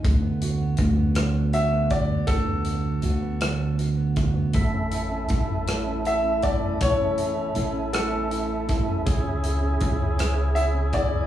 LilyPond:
<<
  \new Staff \with { instrumentName = "Grand piano" } { \time 6/8 \key a \major \tempo 4. = 53 r2 e''8 d''8 | a'2 r4 | r2 e''8 d''8 | cis''4. a'4 r8 |
r2 e''8 d''8 | }
  \new Staff \with { instrumentName = "Steel-string acoustic guitar" } { \time 6/8 \key a \major d16 b16 fis'16 b16 fis'16 b16 d16 b16 fis'16 b16 fis'16 b16 | d16 b16 fis'16 b16 fis'16 b16 d16 b16 fis'16 b16 fis'16 b16 | a,16 cis'16 e'16 cis'16 e'16 cis'16 a,16 cis'16 e'16 cis'16 e'16 cis'16 | a,16 cis'16 e'16 cis'16 e'16 cis'16 a,16 cis'16 e'16 cis'16 e'16 cis'16 |
cis16 cis'16 e'16 cis'16 e'16 cis'16 cis16 cis'16 e'16 cis'16 e'16 cis'16 | }
  \new Staff \with { instrumentName = "Tonewheel organ" } { \time 6/8 \key a \major r2. | r2. | <a e'>2.~ | <a e'>2. |
<cis gis'>2. | }
  \new Staff \with { instrumentName = "Upright bass" } { \clef bass \time 6/8 \key a \major d,4 d,2 | d,4 d,2 | a,,4 a,,2 | a,,4 a,,2 |
cis,4 cis,2 | }
  \new DrumStaff \with { instrumentName = "Drums" } \drummode { \time 6/8 <hh bd>8 hh8 <hh bd>8 <hh ss>8 hh8 <hh bd>8 | <hh bd>8 hh8 hh8 <hh ss>8 hh8 <hh bd>8 | <hh bd>8 hh8 <hh bd>8 <hh ss>8 hh8 <hh bd>8 | <hh bd>8 hh8 hh8 <hh ss>8 hh8 <hh bd>8 |
<hh bd>8 hh8 <hh bd>8 <hh ss>8 hh8 <hh bd>8 | }
>>